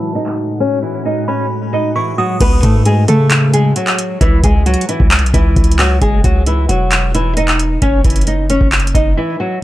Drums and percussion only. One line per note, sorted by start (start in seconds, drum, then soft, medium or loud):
0.15 closed hi-hat medium
0.26 clap medium
0.26 closed hi-hat soft
0.38 closed hi-hat medium
2.41 kick loud
2.41 closed hi-hat medium
2.41 crash medium
2.63 kick medium
2.63 closed hi-hat medium
2.85 closed hi-hat medium
3.08 closed hi-hat medium
3.30 clap loud
3.30 closed hi-hat medium
3.54 closed hi-hat medium
3.76 closed hi-hat medium
3.87 clap medium
3.87 closed hi-hat soft
3.99 closed hi-hat medium
4.21 kick loud
4.21 closed hi-hat medium
4.44 kick medium
4.44 closed hi-hat medium
4.66 closed hi-hat medium
4.74 closed hi-hat medium
4.81 closed hi-hat medium
4.89 closed hi-hat medium
5.00 kick medium
5.11 clap loud
5.11 closed hi-hat soft
5.19 closed hi-hat medium
5.26 closed hi-hat medium
5.34 kick medium
5.34 closed hi-hat medium
5.56 kick medium
5.56 closed hi-hat soft
5.64 closed hi-hat medium
5.71 closed hi-hat medium
5.79 clap medium
5.79 open hi-hat medium
6.01 kick loud
6.01 closed hi-hat medium
6.24 kick medium
6.24 closed hi-hat medium
6.46 closed hi-hat medium
6.69 closed hi-hat medium
6.91 clap loud
6.91 closed hi-hat medium
7.15 closed hi-hat medium
7.37 closed hi-hat medium
7.48 clap medium
7.48 closed hi-hat soft
7.59 closed hi-hat medium
7.82 kick loud
7.82 closed hi-hat medium
8.04 kick medium
8.04 closed hi-hat medium
8.10 closed hi-hat medium
8.16 closed hi-hat medium
8.21 closed hi-hat medium
8.27 closed hi-hat medium
8.50 closed hi-hat medium
8.61 kick medium
8.72 clap loud
8.72 closed hi-hat soft
8.80 closed hi-hat medium
8.87 closed hi-hat medium
8.95 kick medium
8.95 closed hi-hat medium